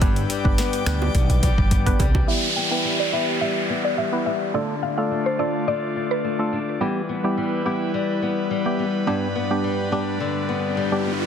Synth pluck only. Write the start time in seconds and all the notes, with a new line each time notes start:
2.28 E5
2.56 G5
2.71 G5
3.00 D5
3.13 E5
3.41 E5
3.85 D5
3.98 E5
4.26 E5
4.54 D5
4.83 F5
4.98 F5
5.26 C5
5.39 D5
5.68 D5
6.11 B4